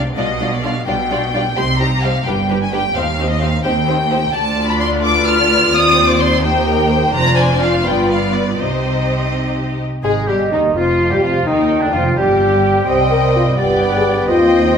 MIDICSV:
0, 0, Header, 1, 10, 480
1, 0, Start_track
1, 0, Key_signature, -3, "minor"
1, 0, Tempo, 464756
1, 175, Time_signature, 6, 3, 24, 8
1, 7373, Tempo, 483481
1, 10733, Tempo, 468750
1, 15089, End_track
2, 0, Start_track
2, 0, Title_t, "Violin section"
2, 0, Program_c, 0, 48
2, 173, Note_on_c, 0, 75, 72
2, 528, Note_off_c, 0, 75, 0
2, 547, Note_on_c, 0, 74, 61
2, 657, Note_on_c, 0, 77, 68
2, 662, Note_off_c, 0, 74, 0
2, 893, Note_on_c, 0, 79, 69
2, 898, Note_off_c, 0, 77, 0
2, 1604, Note_off_c, 0, 79, 0
2, 1620, Note_on_c, 0, 84, 83
2, 1860, Note_off_c, 0, 84, 0
2, 1861, Note_on_c, 0, 82, 76
2, 2094, Note_on_c, 0, 77, 70
2, 2095, Note_off_c, 0, 82, 0
2, 2337, Note_off_c, 0, 77, 0
2, 2337, Note_on_c, 0, 79, 58
2, 2698, Note_off_c, 0, 79, 0
2, 2710, Note_on_c, 0, 80, 73
2, 2813, Note_on_c, 0, 79, 69
2, 2822, Note_off_c, 0, 80, 0
2, 3050, Note_off_c, 0, 79, 0
2, 3059, Note_on_c, 0, 77, 80
2, 3405, Note_on_c, 0, 75, 64
2, 3417, Note_off_c, 0, 77, 0
2, 3519, Note_on_c, 0, 77, 75
2, 3527, Note_off_c, 0, 75, 0
2, 3760, Note_on_c, 0, 79, 75
2, 3764, Note_off_c, 0, 77, 0
2, 4465, Note_off_c, 0, 79, 0
2, 4467, Note_on_c, 0, 81, 92
2, 4835, Note_off_c, 0, 81, 0
2, 4840, Note_on_c, 0, 83, 65
2, 4954, Note_on_c, 0, 84, 80
2, 4962, Note_off_c, 0, 83, 0
2, 5036, Note_off_c, 0, 84, 0
2, 5200, Note_on_c, 0, 86, 83
2, 5438, Note_on_c, 0, 89, 89
2, 5439, Note_off_c, 0, 86, 0
2, 5917, Note_on_c, 0, 87, 98
2, 5922, Note_off_c, 0, 89, 0
2, 6275, Note_on_c, 0, 86, 74
2, 6279, Note_off_c, 0, 87, 0
2, 6389, Note_on_c, 0, 84, 87
2, 6398, Note_off_c, 0, 86, 0
2, 6637, Note_off_c, 0, 84, 0
2, 6640, Note_on_c, 0, 79, 73
2, 7354, Note_off_c, 0, 79, 0
2, 7369, Note_on_c, 0, 82, 105
2, 7587, Note_on_c, 0, 80, 79
2, 7599, Note_off_c, 0, 82, 0
2, 7829, Note_on_c, 0, 77, 80
2, 7832, Note_off_c, 0, 80, 0
2, 8073, Note_off_c, 0, 77, 0
2, 8074, Note_on_c, 0, 79, 69
2, 8316, Note_off_c, 0, 79, 0
2, 8327, Note_on_c, 0, 77, 59
2, 8560, Note_on_c, 0, 74, 56
2, 8561, Note_off_c, 0, 77, 0
2, 8805, Note_off_c, 0, 74, 0
2, 8808, Note_on_c, 0, 72, 62
2, 9521, Note_off_c, 0, 72, 0
2, 10247, Note_on_c, 0, 68, 66
2, 10472, Note_off_c, 0, 68, 0
2, 10488, Note_on_c, 0, 67, 49
2, 10717, Note_on_c, 0, 63, 45
2, 10722, Note_off_c, 0, 67, 0
2, 10798, Note_off_c, 0, 63, 0
2, 10963, Note_on_c, 0, 65, 48
2, 11323, Note_off_c, 0, 65, 0
2, 11325, Note_on_c, 0, 67, 52
2, 11451, Note_on_c, 0, 65, 53
2, 11452, Note_off_c, 0, 67, 0
2, 11686, Note_on_c, 0, 63, 55
2, 11697, Note_off_c, 0, 65, 0
2, 12047, Note_off_c, 0, 63, 0
2, 12047, Note_on_c, 0, 62, 47
2, 12163, Note_on_c, 0, 65, 54
2, 12171, Note_off_c, 0, 62, 0
2, 12410, Note_off_c, 0, 65, 0
2, 12421, Note_on_c, 0, 67, 49
2, 13126, Note_off_c, 0, 67, 0
2, 13138, Note_on_c, 0, 79, 51
2, 13817, Note_off_c, 0, 79, 0
2, 13857, Note_on_c, 0, 79, 49
2, 14560, Note_off_c, 0, 79, 0
2, 14586, Note_on_c, 0, 79, 57
2, 15089, Note_off_c, 0, 79, 0
2, 15089, End_track
3, 0, Start_track
3, 0, Title_t, "Flute section"
3, 0, Program_c, 1, 73
3, 10251, Note_on_c, 1, 75, 45
3, 10928, Note_off_c, 1, 75, 0
3, 10956, Note_on_c, 1, 77, 48
3, 11677, Note_off_c, 1, 77, 0
3, 11693, Note_on_c, 1, 79, 53
3, 12401, Note_off_c, 1, 79, 0
3, 12417, Note_on_c, 1, 79, 64
3, 13569, Note_off_c, 1, 79, 0
3, 13863, Note_on_c, 1, 71, 56
3, 14563, Note_off_c, 1, 71, 0
3, 14586, Note_on_c, 1, 72, 55
3, 15089, Note_off_c, 1, 72, 0
3, 15089, End_track
4, 0, Start_track
4, 0, Title_t, "Violin section"
4, 0, Program_c, 2, 48
4, 179, Note_on_c, 2, 74, 53
4, 181, Note_on_c, 2, 65, 49
4, 261, Note_off_c, 2, 74, 0
4, 264, Note_off_c, 2, 65, 0
4, 415, Note_on_c, 2, 65, 48
4, 415, Note_on_c, 2, 74, 42
4, 497, Note_off_c, 2, 74, 0
4, 498, Note_off_c, 2, 65, 0
4, 662, Note_on_c, 2, 65, 45
4, 665, Note_on_c, 2, 74, 46
4, 744, Note_off_c, 2, 65, 0
4, 747, Note_off_c, 2, 74, 0
4, 904, Note_on_c, 2, 65, 49
4, 905, Note_on_c, 2, 74, 47
4, 987, Note_off_c, 2, 65, 0
4, 988, Note_off_c, 2, 74, 0
4, 1141, Note_on_c, 2, 65, 47
4, 1145, Note_on_c, 2, 74, 45
4, 1224, Note_off_c, 2, 65, 0
4, 1228, Note_off_c, 2, 74, 0
4, 1379, Note_on_c, 2, 74, 50
4, 1384, Note_on_c, 2, 65, 49
4, 1462, Note_off_c, 2, 74, 0
4, 1467, Note_off_c, 2, 65, 0
4, 1606, Note_on_c, 2, 72, 48
4, 1609, Note_on_c, 2, 67, 52
4, 1689, Note_off_c, 2, 72, 0
4, 1692, Note_off_c, 2, 67, 0
4, 1840, Note_on_c, 2, 72, 47
4, 1844, Note_on_c, 2, 67, 44
4, 1922, Note_off_c, 2, 72, 0
4, 1927, Note_off_c, 2, 67, 0
4, 2096, Note_on_c, 2, 67, 47
4, 2099, Note_on_c, 2, 72, 49
4, 2178, Note_off_c, 2, 67, 0
4, 2182, Note_off_c, 2, 72, 0
4, 2330, Note_on_c, 2, 67, 49
4, 2332, Note_on_c, 2, 71, 48
4, 2413, Note_off_c, 2, 67, 0
4, 2415, Note_off_c, 2, 71, 0
4, 2571, Note_on_c, 2, 71, 46
4, 2572, Note_on_c, 2, 67, 46
4, 2654, Note_off_c, 2, 67, 0
4, 2654, Note_off_c, 2, 71, 0
4, 2810, Note_on_c, 2, 71, 53
4, 2813, Note_on_c, 2, 67, 48
4, 2893, Note_off_c, 2, 71, 0
4, 2895, Note_off_c, 2, 67, 0
4, 3046, Note_on_c, 2, 72, 50
4, 3048, Note_on_c, 2, 67, 50
4, 3128, Note_off_c, 2, 72, 0
4, 3130, Note_off_c, 2, 67, 0
4, 3287, Note_on_c, 2, 72, 45
4, 3291, Note_on_c, 2, 67, 46
4, 3370, Note_off_c, 2, 72, 0
4, 3373, Note_off_c, 2, 67, 0
4, 3519, Note_on_c, 2, 72, 45
4, 3521, Note_on_c, 2, 67, 49
4, 3602, Note_off_c, 2, 72, 0
4, 3604, Note_off_c, 2, 67, 0
4, 3756, Note_on_c, 2, 72, 53
4, 3757, Note_on_c, 2, 67, 53
4, 3839, Note_off_c, 2, 72, 0
4, 3840, Note_off_c, 2, 67, 0
4, 3987, Note_on_c, 2, 67, 50
4, 3998, Note_on_c, 2, 72, 50
4, 4070, Note_off_c, 2, 67, 0
4, 4080, Note_off_c, 2, 72, 0
4, 4233, Note_on_c, 2, 72, 52
4, 4234, Note_on_c, 2, 67, 53
4, 4315, Note_off_c, 2, 72, 0
4, 4316, Note_off_c, 2, 67, 0
4, 4467, Note_on_c, 2, 74, 52
4, 4475, Note_off_c, 2, 74, 0
4, 4475, Note_on_c, 2, 74, 57
4, 5157, Note_off_c, 2, 74, 0
4, 5196, Note_on_c, 2, 74, 63
4, 5199, Note_on_c, 2, 71, 59
4, 5923, Note_off_c, 2, 71, 0
4, 5936, Note_on_c, 2, 72, 60
4, 6610, Note_off_c, 2, 74, 0
4, 6634, Note_off_c, 2, 72, 0
4, 6646, Note_on_c, 2, 72, 56
4, 6648, Note_off_c, 2, 72, 0
4, 6648, Note_on_c, 2, 72, 63
4, 6880, Note_on_c, 2, 70, 66
4, 6884, Note_off_c, 2, 72, 0
4, 7124, Note_on_c, 2, 72, 63
4, 7125, Note_off_c, 2, 70, 0
4, 7383, Note_on_c, 2, 74, 59
4, 8063, Note_off_c, 2, 74, 0
4, 8075, Note_on_c, 2, 74, 51
4, 8076, Note_off_c, 2, 72, 0
4, 8076, Note_on_c, 2, 71, 52
4, 8789, Note_off_c, 2, 74, 0
4, 8803, Note_on_c, 2, 75, 44
4, 8804, Note_on_c, 2, 67, 47
4, 8805, Note_off_c, 2, 71, 0
4, 10029, Note_off_c, 2, 67, 0
4, 10053, Note_off_c, 2, 75, 0
4, 10249, Note_on_c, 2, 68, 59
4, 10328, Note_off_c, 2, 68, 0
4, 10490, Note_on_c, 2, 67, 39
4, 10569, Note_off_c, 2, 67, 0
4, 10738, Note_on_c, 2, 63, 46
4, 10820, Note_off_c, 2, 63, 0
4, 10978, Note_on_c, 2, 65, 46
4, 11325, Note_on_c, 2, 67, 47
4, 11331, Note_off_c, 2, 65, 0
4, 11436, Note_on_c, 2, 65, 52
4, 11451, Note_off_c, 2, 67, 0
4, 11684, Note_off_c, 2, 65, 0
4, 11699, Note_on_c, 2, 63, 52
4, 12043, Note_on_c, 2, 62, 46
4, 12053, Note_off_c, 2, 63, 0
4, 12157, Note_on_c, 2, 65, 49
4, 12171, Note_off_c, 2, 62, 0
4, 12239, Note_off_c, 2, 65, 0
4, 12404, Note_on_c, 2, 67, 55
4, 13117, Note_off_c, 2, 67, 0
4, 13135, Note_on_c, 2, 75, 49
4, 13816, Note_off_c, 2, 75, 0
4, 13861, Note_on_c, 2, 74, 47
4, 14576, Note_off_c, 2, 74, 0
4, 14576, Note_on_c, 2, 75, 53
4, 15089, Note_off_c, 2, 75, 0
4, 15089, End_track
5, 0, Start_track
5, 0, Title_t, "Oboe"
5, 0, Program_c, 3, 68
5, 10253, Note_on_c, 3, 68, 58
5, 10486, Note_on_c, 3, 67, 45
5, 10501, Note_off_c, 3, 68, 0
5, 10724, Note_off_c, 3, 67, 0
5, 10730, Note_on_c, 3, 63, 49
5, 10968, Note_off_c, 3, 63, 0
5, 10985, Note_on_c, 3, 65, 48
5, 11328, Note_off_c, 3, 65, 0
5, 11334, Note_on_c, 3, 67, 50
5, 11389, Note_off_c, 3, 67, 0
5, 11461, Note_on_c, 3, 65, 47
5, 11701, Note_on_c, 3, 63, 55
5, 11716, Note_off_c, 3, 65, 0
5, 12055, Note_on_c, 3, 62, 45
5, 12071, Note_off_c, 3, 63, 0
5, 12173, Note_off_c, 3, 62, 0
5, 12179, Note_on_c, 3, 65, 54
5, 12414, Note_off_c, 3, 65, 0
5, 12418, Note_on_c, 3, 67, 56
5, 13124, Note_off_c, 3, 67, 0
5, 13141, Note_on_c, 3, 75, 46
5, 13859, Note_on_c, 3, 74, 49
5, 13875, Note_off_c, 3, 75, 0
5, 14576, Note_on_c, 3, 75, 51
5, 14592, Note_off_c, 3, 74, 0
5, 15089, Note_off_c, 3, 75, 0
5, 15089, End_track
6, 0, Start_track
6, 0, Title_t, "French horn section"
6, 0, Program_c, 4, 60
6, 10250, Note_on_c, 4, 68, 65
6, 10358, Note_off_c, 4, 68, 0
6, 10484, Note_on_c, 4, 67, 45
6, 10720, Note_off_c, 4, 67, 0
6, 10728, Note_on_c, 4, 63, 53
6, 10838, Note_off_c, 4, 63, 0
6, 10974, Note_on_c, 4, 65, 54
6, 11329, Note_off_c, 4, 65, 0
6, 11346, Note_on_c, 4, 67, 55
6, 11460, Note_off_c, 4, 67, 0
6, 11463, Note_on_c, 4, 65, 53
6, 11691, Note_on_c, 4, 63, 58
6, 11698, Note_off_c, 4, 65, 0
6, 12049, Note_off_c, 4, 63, 0
6, 12068, Note_on_c, 4, 62, 55
6, 12120, Note_off_c, 4, 62, 0
6, 12175, Note_on_c, 4, 65, 55
6, 12411, Note_off_c, 4, 65, 0
6, 12418, Note_on_c, 4, 67, 63
6, 13124, Note_off_c, 4, 67, 0
6, 13137, Note_on_c, 4, 72, 71
6, 13245, Note_off_c, 4, 72, 0
6, 13380, Note_on_c, 4, 70, 69
6, 13615, Note_off_c, 4, 70, 0
6, 13625, Note_on_c, 4, 65, 61
6, 13731, Note_off_c, 4, 65, 0
6, 13861, Note_on_c, 4, 67, 57
6, 14212, Note_off_c, 4, 67, 0
6, 14236, Note_on_c, 4, 68, 69
6, 14344, Note_off_c, 4, 68, 0
6, 14344, Note_on_c, 4, 67, 66
6, 14578, Note_off_c, 4, 67, 0
6, 14584, Note_on_c, 4, 65, 72
6, 14928, Note_off_c, 4, 65, 0
6, 14947, Note_on_c, 4, 63, 65
6, 15055, Note_off_c, 4, 63, 0
6, 15056, Note_on_c, 4, 65, 68
6, 15089, Note_off_c, 4, 65, 0
6, 15089, End_track
7, 0, Start_track
7, 0, Title_t, "Viola section"
7, 0, Program_c, 5, 48
7, 171, Note_on_c, 5, 62, 54
7, 172, Note_on_c, 5, 55, 56
7, 254, Note_off_c, 5, 55, 0
7, 254, Note_off_c, 5, 62, 0
7, 412, Note_on_c, 5, 55, 46
7, 418, Note_on_c, 5, 62, 46
7, 495, Note_off_c, 5, 55, 0
7, 500, Note_off_c, 5, 62, 0
7, 658, Note_on_c, 5, 55, 45
7, 659, Note_on_c, 5, 62, 44
7, 741, Note_off_c, 5, 55, 0
7, 742, Note_off_c, 5, 62, 0
7, 895, Note_on_c, 5, 55, 52
7, 895, Note_on_c, 5, 62, 47
7, 977, Note_off_c, 5, 55, 0
7, 978, Note_off_c, 5, 62, 0
7, 1138, Note_on_c, 5, 55, 45
7, 1142, Note_on_c, 5, 62, 44
7, 1221, Note_off_c, 5, 55, 0
7, 1224, Note_off_c, 5, 62, 0
7, 1376, Note_on_c, 5, 62, 48
7, 1379, Note_on_c, 5, 55, 48
7, 1459, Note_off_c, 5, 62, 0
7, 1462, Note_off_c, 5, 55, 0
7, 1620, Note_on_c, 5, 55, 55
7, 1627, Note_on_c, 5, 63, 51
7, 1703, Note_off_c, 5, 55, 0
7, 1709, Note_off_c, 5, 63, 0
7, 1857, Note_on_c, 5, 63, 48
7, 1859, Note_on_c, 5, 55, 45
7, 1940, Note_off_c, 5, 63, 0
7, 1942, Note_off_c, 5, 55, 0
7, 2105, Note_on_c, 5, 63, 44
7, 2108, Note_on_c, 5, 55, 45
7, 2187, Note_off_c, 5, 63, 0
7, 2191, Note_off_c, 5, 55, 0
7, 2343, Note_on_c, 5, 62, 52
7, 2348, Note_on_c, 5, 55, 50
7, 2426, Note_off_c, 5, 62, 0
7, 2430, Note_off_c, 5, 55, 0
7, 2581, Note_on_c, 5, 62, 46
7, 2584, Note_on_c, 5, 55, 45
7, 2664, Note_off_c, 5, 62, 0
7, 2667, Note_off_c, 5, 55, 0
7, 2815, Note_on_c, 5, 55, 49
7, 2821, Note_on_c, 5, 62, 47
7, 2898, Note_off_c, 5, 55, 0
7, 2903, Note_off_c, 5, 62, 0
7, 3065, Note_on_c, 5, 60, 56
7, 3066, Note_on_c, 5, 63, 54
7, 3148, Note_off_c, 5, 60, 0
7, 3148, Note_off_c, 5, 63, 0
7, 3301, Note_on_c, 5, 60, 48
7, 3304, Note_on_c, 5, 63, 50
7, 3384, Note_off_c, 5, 60, 0
7, 3386, Note_off_c, 5, 63, 0
7, 3540, Note_on_c, 5, 60, 49
7, 3541, Note_on_c, 5, 63, 49
7, 3622, Note_off_c, 5, 60, 0
7, 3623, Note_off_c, 5, 63, 0
7, 3771, Note_on_c, 5, 63, 56
7, 3773, Note_on_c, 5, 60, 54
7, 3854, Note_off_c, 5, 63, 0
7, 3855, Note_off_c, 5, 60, 0
7, 4013, Note_on_c, 5, 63, 52
7, 4016, Note_on_c, 5, 60, 49
7, 4096, Note_off_c, 5, 63, 0
7, 4099, Note_off_c, 5, 60, 0
7, 4246, Note_on_c, 5, 63, 55
7, 4249, Note_on_c, 5, 60, 53
7, 4329, Note_off_c, 5, 63, 0
7, 4332, Note_off_c, 5, 60, 0
7, 4486, Note_on_c, 5, 62, 66
7, 4489, Note_on_c, 5, 65, 69
7, 5884, Note_off_c, 5, 62, 0
7, 5922, Note_on_c, 5, 60, 69
7, 6604, Note_off_c, 5, 65, 0
7, 6633, Note_on_c, 5, 63, 62
7, 6636, Note_on_c, 5, 67, 61
7, 6642, Note_off_c, 5, 60, 0
7, 7352, Note_off_c, 5, 67, 0
7, 7363, Note_on_c, 5, 62, 63
7, 7365, Note_off_c, 5, 63, 0
7, 7369, Note_on_c, 5, 65, 67
7, 8061, Note_off_c, 5, 62, 0
7, 8076, Note_on_c, 5, 59, 58
7, 8790, Note_off_c, 5, 59, 0
7, 8803, Note_on_c, 5, 60, 49
7, 8804, Note_on_c, 5, 63, 48
7, 8805, Note_off_c, 5, 65, 0
7, 10029, Note_off_c, 5, 63, 0
7, 10053, Note_off_c, 5, 60, 0
7, 10249, Note_on_c, 5, 56, 62
7, 10329, Note_off_c, 5, 56, 0
7, 10491, Note_on_c, 5, 55, 46
7, 10724, Note_off_c, 5, 55, 0
7, 10729, Note_on_c, 5, 51, 43
7, 10967, Note_off_c, 5, 51, 0
7, 10973, Note_on_c, 5, 53, 50
7, 11328, Note_off_c, 5, 53, 0
7, 11339, Note_on_c, 5, 55, 46
7, 11458, Note_on_c, 5, 53, 52
7, 11459, Note_off_c, 5, 55, 0
7, 11540, Note_off_c, 5, 53, 0
7, 11704, Note_on_c, 5, 51, 52
7, 12056, Note_off_c, 5, 51, 0
7, 12064, Note_on_c, 5, 50, 43
7, 12178, Note_on_c, 5, 53, 52
7, 12179, Note_off_c, 5, 50, 0
7, 12413, Note_off_c, 5, 53, 0
7, 12416, Note_on_c, 5, 55, 64
7, 13123, Note_off_c, 5, 55, 0
7, 13135, Note_on_c, 5, 60, 52
7, 13816, Note_off_c, 5, 60, 0
7, 13848, Note_on_c, 5, 59, 49
7, 14569, Note_off_c, 5, 59, 0
7, 14570, Note_on_c, 5, 60, 57
7, 15089, Note_off_c, 5, 60, 0
7, 15089, End_track
8, 0, Start_track
8, 0, Title_t, "Bassoon"
8, 0, Program_c, 6, 70
8, 10255, Note_on_c, 6, 56, 65
8, 10476, Note_off_c, 6, 56, 0
8, 10497, Note_on_c, 6, 55, 44
8, 10603, Note_off_c, 6, 55, 0
8, 10723, Note_on_c, 6, 51, 48
8, 10964, Note_off_c, 6, 51, 0
8, 10974, Note_on_c, 6, 53, 48
8, 11327, Note_on_c, 6, 55, 48
8, 11342, Note_off_c, 6, 53, 0
8, 11448, Note_off_c, 6, 55, 0
8, 11454, Note_on_c, 6, 53, 50
8, 11689, Note_off_c, 6, 53, 0
8, 11695, Note_on_c, 6, 51, 56
8, 12047, Note_off_c, 6, 51, 0
8, 12053, Note_on_c, 6, 50, 49
8, 12169, Note_on_c, 6, 53, 55
8, 12184, Note_off_c, 6, 50, 0
8, 12415, Note_on_c, 6, 55, 57
8, 12430, Note_off_c, 6, 53, 0
8, 13126, Note_off_c, 6, 55, 0
8, 13132, Note_on_c, 6, 55, 45
8, 13853, Note_on_c, 6, 59, 48
8, 13869, Note_off_c, 6, 55, 0
8, 14567, Note_off_c, 6, 59, 0
8, 14573, Note_on_c, 6, 60, 59
8, 15089, Note_off_c, 6, 60, 0
8, 15089, End_track
9, 0, Start_track
9, 0, Title_t, "Cello section"
9, 0, Program_c, 7, 48
9, 174, Note_on_c, 7, 47, 64
9, 812, Note_off_c, 7, 47, 0
9, 899, Note_on_c, 7, 47, 60
9, 1536, Note_off_c, 7, 47, 0
9, 1624, Note_on_c, 7, 48, 57
9, 2257, Note_off_c, 7, 48, 0
9, 2341, Note_on_c, 7, 43, 64
9, 2974, Note_off_c, 7, 43, 0
9, 3059, Note_on_c, 7, 39, 60
9, 3689, Note_off_c, 7, 39, 0
9, 3772, Note_on_c, 7, 39, 68
9, 4401, Note_off_c, 7, 39, 0
9, 4489, Note_on_c, 7, 38, 65
9, 5886, Note_off_c, 7, 38, 0
9, 5919, Note_on_c, 7, 39, 63
9, 7338, Note_off_c, 7, 39, 0
9, 7371, Note_on_c, 7, 41, 61
9, 8064, Note_off_c, 7, 41, 0
9, 8079, Note_on_c, 7, 43, 58
9, 8806, Note_off_c, 7, 43, 0
9, 8806, Note_on_c, 7, 48, 49
9, 10055, Note_off_c, 7, 48, 0
9, 10249, Note_on_c, 7, 44, 62
9, 10473, Note_off_c, 7, 44, 0
9, 10489, Note_on_c, 7, 43, 48
9, 10728, Note_off_c, 7, 43, 0
9, 10730, Note_on_c, 7, 39, 51
9, 10966, Note_on_c, 7, 41, 49
9, 10973, Note_off_c, 7, 39, 0
9, 11324, Note_on_c, 7, 43, 45
9, 11325, Note_off_c, 7, 41, 0
9, 11450, Note_on_c, 7, 41, 46
9, 11451, Note_off_c, 7, 43, 0
9, 11691, Note_off_c, 7, 41, 0
9, 11694, Note_on_c, 7, 39, 46
9, 12051, Note_off_c, 7, 39, 0
9, 12053, Note_on_c, 7, 38, 45
9, 12168, Note_on_c, 7, 41, 53
9, 12174, Note_off_c, 7, 38, 0
9, 12408, Note_off_c, 7, 41, 0
9, 12412, Note_on_c, 7, 43, 57
9, 13121, Note_off_c, 7, 43, 0
9, 13133, Note_on_c, 7, 48, 47
9, 13815, Note_off_c, 7, 48, 0
9, 13855, Note_on_c, 7, 43, 50
9, 14571, Note_on_c, 7, 39, 58
9, 14573, Note_off_c, 7, 43, 0
9, 15089, Note_off_c, 7, 39, 0
9, 15089, End_track
10, 0, Start_track
10, 0, Title_t, "Double bass section"
10, 0, Program_c, 8, 48
10, 170, Note_on_c, 8, 35, 66
10, 810, Note_off_c, 8, 35, 0
10, 897, Note_on_c, 8, 35, 61
10, 1535, Note_off_c, 8, 35, 0
10, 1619, Note_on_c, 8, 36, 61
10, 2254, Note_off_c, 8, 36, 0
10, 2343, Note_on_c, 8, 31, 58
10, 2975, Note_off_c, 8, 31, 0
10, 3054, Note_on_c, 8, 39, 65
10, 3686, Note_off_c, 8, 39, 0
10, 3772, Note_on_c, 8, 39, 66
10, 4401, Note_off_c, 8, 39, 0
10, 4481, Note_on_c, 8, 38, 64
10, 5882, Note_off_c, 8, 38, 0
10, 5923, Note_on_c, 8, 39, 70
10, 7340, Note_off_c, 8, 39, 0
10, 7367, Note_on_c, 8, 29, 62
10, 8062, Note_off_c, 8, 29, 0
10, 8072, Note_on_c, 8, 31, 55
10, 8802, Note_on_c, 8, 36, 51
10, 8803, Note_off_c, 8, 31, 0
10, 10053, Note_off_c, 8, 36, 0
10, 10254, Note_on_c, 8, 32, 61
10, 10475, Note_off_c, 8, 32, 0
10, 10486, Note_on_c, 8, 31, 47
10, 10724, Note_on_c, 8, 39, 51
10, 10726, Note_off_c, 8, 31, 0
10, 10970, Note_off_c, 8, 39, 0
10, 10970, Note_on_c, 8, 29, 49
10, 11327, Note_off_c, 8, 29, 0
10, 11446, Note_on_c, 8, 29, 54
10, 11690, Note_off_c, 8, 29, 0
10, 11695, Note_on_c, 8, 39, 53
10, 12051, Note_off_c, 8, 39, 0
10, 12177, Note_on_c, 8, 29, 55
10, 12410, Note_on_c, 8, 31, 59
10, 12412, Note_off_c, 8, 29, 0
10, 13120, Note_off_c, 8, 31, 0
10, 13131, Note_on_c, 8, 36, 54
10, 13814, Note_off_c, 8, 36, 0
10, 13859, Note_on_c, 8, 31, 54
10, 14571, Note_on_c, 8, 39, 58
10, 14575, Note_off_c, 8, 31, 0
10, 15089, Note_off_c, 8, 39, 0
10, 15089, End_track
0, 0, End_of_file